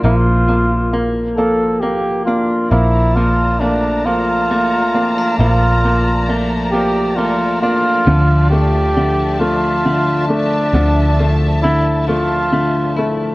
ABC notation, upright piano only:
X:1
M:6/8
L:1/8
Q:3/8=45
K:Bblyd
V:1 name="Upright piano"
B, B, B, B, B, B, | B, B, B, B, B, B, | B, B, B, B, B, B, | D, A, D, A, D, A, |
D, A, D, A, D, A, |]